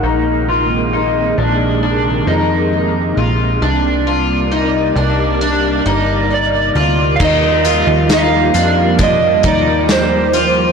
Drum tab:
CC |--------|--------|x-------|
HH |--------|--------|-xxxxxxx|
TB |--------|--------|--x---x-|
SD |--------|--------|--o---o-|
BD |--------|--------|o---oo--|